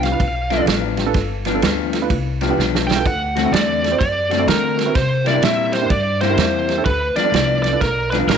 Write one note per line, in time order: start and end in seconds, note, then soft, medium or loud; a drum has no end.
0.00 0.18 C2 medium
0.00 0.07 F4 soft
0.00 0.07 G4 soft
0.00 0.64 F5 medium
0.00 snare soft
0.00 ride medium
0.12 0.20 B3 medium
0.12 0.20 D4 medium
0.12 0.20 F4 medium
0.12 0.20 B4 medium
0.20 0.65 B1 medium
0.20 kick medium
0.20 ride medium
0.50 0.66 G2 medium
0.50 0.67 F3 medium
0.50 0.67 B3 medium
0.50 0.68 D4 medium
0.50 0.55 F4 soft
0.50 0.55 A4 soft
0.50 snare soft
0.50 ride soft
0.59 0.67 B3 medium
0.59 0.68 D4 medium
0.59 0.67 F4 medium
0.59 0.68 A4 medium
0.66 1.13 A1 medium
0.66 1.03 G2 medium
0.66 1.03 F3 medium
0.66 1.04 B3 medium
0.66 1.04 D4 medium
0.66 snare medium
0.66 ride medium
0.97 1.02 F4 soft
0.97 1.02 G4 soft
0.97 snare soft
0.97 ride soft
1.06 1.15 B3 medium
1.06 1.15 D4 medium
1.06 1.15 F4 medium
1.06 1.15 A4 medium
1.14 1.61 G1 medium
1.14 kick loud
1.14 snare soft
1.14 ride medium
1.45 1.61 G2 medium
1.45 1.62 F3 medium
1.45 1.62 B3 medium
1.45 1.62 D4 medium
1.45 1.50 F4 soft
1.45 1.50 B4 soft
1.45 snare soft
1.45 ride medium
1.54 1.63 B3 medium
1.54 1.63 D4 medium
1.54 1.63 F4 medium
1.54 1.63 A4 medium
1.61 2.08 D2 medium
1.61 1.98 G2 medium
1.61 1.99 F3 medium
1.61 1.99 B3 medium
1.61 1.99 D4 medium
1.61 snare medium
1.61 ride medium
1.93 1.97 F4 soft
1.93 1.97 A4 soft
1.93 snare soft
1.93 ride medium
2.01 2.10 B3 medium
2.01 2.10 D4 medium
2.01 2.10 F4 medium
2.01 2.11 B4 medium
2.10 2.56 C2 medium
2.10 kick loud
2.10 ride medium
2.41 2.57 G2 medium
2.41 2.57 F3 medium
2.41 2.58 B3 medium
2.41 2.58 D4 medium
2.41 2.45 F4 soft
2.41 2.45 G4 soft
2.41 snare soft
2.41 ride soft
2.49 2.58 B3 medium
2.49 2.58 D4 medium
2.49 2.58 F4 medium
2.49 2.58 G4 medium
2.57 3.04 B1 medium
2.57 2.94 G2 medium
2.57 2.94 F3 medium
2.57 2.94 B3 medium
2.57 2.94 D4 medium
2.57 snare medium
2.75 snare medium
2.87 2.92 F4 soft
2.87 2.92 G4 soft
2.87 3.04 G5 medium
2.87 snare medium
2.96 3.05 B3 medium
2.96 3.05 D4 medium
2.96 3.05 F4 medium
2.96 3.05 A4 medium
3.05 3.51 D2 medium
3.05 3.50 F#5 loud
3.05 kick loud
3.05 ride medium
3.35 3.53 D3 medium
3.35 3.53 A3 medium
3.35 3.53 C4 medium
3.35 3.40 F#4 soft
3.35 3.53 F#4 medium
3.35 3.40 A4 soft
3.35 snare soft
3.35 ride medium
3.44 3.53 C4 medium
3.44 3.53 E4 soft
3.44 3.53 F#4 soft
3.44 3.53 A4 medium
3.52 3.98 E2 medium
3.52 3.89 D3 medium
3.52 3.89 A3 medium
3.52 3.89 C4 medium
3.52 3.90 F#4 medium
3.52 3.98 D5 medium
3.52 snare loud
3.52 ride medium
3.82 3.87 F#4 soft
3.82 3.88 A4 soft
3.82 snare soft
3.82 ride medium
3.91 4.00 C4 medium
3.91 4.00 E4 medium
3.91 4.00 F#4 medium
3.91 4.00 C5 medium
4.00 4.47 F#2 medium
4.00 4.44 D5 medium
4.00 kick loud
4.00 ride medium
4.29 4.47 D3 medium
4.29 4.48 A3 medium
4.29 4.48 C4 medium
4.29 4.34 F#4 soft
4.29 4.48 F#4 medium
4.29 4.35 A4 soft
4.29 snare soft
4.29 ride soft
4.38 4.47 C4 medium
4.38 4.47 E4 medium
4.38 4.48 F#4 soft
4.38 4.48 A4 medium
4.47 4.94 D3 medium
4.47 4.84 D3 medium
4.47 4.84 A3 medium
4.47 4.84 C4 medium
4.47 4.84 F#4 medium
4.47 4.93 A#4 medium
4.47 snare medium
4.47 ride medium
4.77 4.82 F#4 soft
4.77 4.82 A4 soft
4.77 snare soft
4.77 ride medium
4.85 4.95 C4 medium
4.85 4.95 E4 medium
4.85 4.95 F#4 medium
4.85 4.95 B4 medium
4.95 5.41 C3 medium
4.95 5.25 C5 medium
4.95 kick loud
4.95 snare soft
4.95 ride medium
5.24 5.42 C3 medium
5.24 5.42 G3 medium
5.24 5.43 A#3 medium
5.24 5.43 E4 medium
5.24 5.29 G4 soft
5.24 5.30 A#4 soft
5.24 5.44 D5 medium
5.24 snare soft
5.24 ride medium
5.33 5.42 D4 medium
5.33 5.43 E4 soft
5.33 5.43 G4 medium
5.33 5.43 A#4 medium
5.42 5.89 A#2 medium
5.42 5.79 C3 medium
5.42 5.79 G3 medium
5.42 5.79 A#3 medium
5.42 5.79 E4 medium
5.42 5.75 E5 medium
5.42 snare loud
5.42 ride medium
5.73 5.78 G4 soft
5.73 5.78 A#4 soft
5.73 5.91 C5 medium
5.73 snare soft
5.73 ride medium
5.81 5.91 D4 medium
5.81 5.90 E4 medium
5.81 5.91 G4 medium
5.81 5.91 A#4 medium
5.90 6.36 G2 medium
5.90 6.18 D5 medium
5.90 kick loud
5.90 ride medium
6.21 6.38 C3 medium
6.21 6.39 G3 medium
6.21 6.39 A#3 medium
6.21 6.39 E4 medium
6.21 6.25 G4 soft
6.21 6.25 A#4 soft
6.21 6.82 C5 medium
6.21 snare soft
6.21 ride soft
6.29 6.38 D4 medium
6.29 6.38 E4 medium
6.29 6.38 G4 medium
6.29 6.38 A#4 medium
6.37 6.84 E2 medium
6.37 6.74 C3 medium
6.37 6.75 G3 medium
6.37 6.75 A#3 medium
6.37 6.75 E4 medium
6.37 snare medium
6.37 ride medium
6.68 6.73 G4 soft
6.68 6.73 A#4 soft
6.68 snare soft
6.68 ride medium
6.77 6.86 D4 medium
6.77 6.86 E4 medium
6.77 6.86 G4 medium
6.77 6.86 A4 medium
6.85 7.14 D2 medium
6.85 7.14 B4 medium
6.85 kick loud
6.85 ride medium
7.15 7.33 G2 medium
7.15 7.33 F3 medium
7.15 7.34 B3 medium
7.15 7.34 D4 medium
7.15 7.20 A4 soft
7.15 7.21 B4 soft
7.15 7.60 D5 medium
7.15 muted upright bass stroke soft
7.15 snare soft
7.15 ride medium
7.24 7.33 D4 medium
7.24 7.33 F4 medium
7.24 7.33 A4 soft
7.24 7.33 D5 medium
7.32 7.79 C2 medium
7.32 7.69 G2 medium
7.32 7.70 F3 medium
7.32 7.70 B3 medium
7.32 7.70 D4 medium
7.32 snare medium
7.32 ride medium
7.63 7.68 A4 soft
7.63 7.68 B4 soft
7.63 7.79 D5 medium
7.63 snare soft
7.63 ride medium
7.72 7.81 D4 medium
7.72 7.81 F4 medium
7.72 7.81 A4 medium
7.72 7.81 B4 medium
7.81 8.27 B1 medium
7.81 8.10 A#4 medium
7.81 kick loud
7.81 snare soft
7.81 ride medium
8.11 8.29 G2 medium
8.11 8.29 F3 medium
8.11 8.29 B3 medium
8.11 8.29 D4 medium
8.11 8.15 A4 soft
8.11 8.16 B4 medium
8.11 8.16 D5 soft
8.11 snare soft
8.11 ride soft
8.19 8.28 D4 medium
8.19 8.28 F4 medium
8.19 8.28 A4 medium
8.19 8.28 B4 medium
8.27 8.38 A1 medium
8.27 8.38 G2 medium
8.27 8.38 F3 medium
8.27 8.38 B3 medium
8.27 8.38 D4 medium
8.27 8.37 A#4 medium
8.27 snare loud
8.27 ride medium